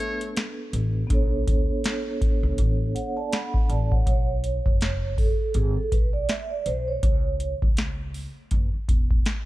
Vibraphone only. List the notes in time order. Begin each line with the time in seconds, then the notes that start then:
Already playing: B3 D4 A4 B4
1.07 B3 D4
1.12 A4 C#5
2.95 C#5 F#5
3.17 D5 A5
3.32 F#5 B5
3.69 D5 A5
3.91 C#5 F#5
4.08 C#5
5.18 A4
5.55 G#4
5.77 A4
5.92 B4
6.13 D5
6.29 E5
6.50 D5
6.66 C5
6.88 C#5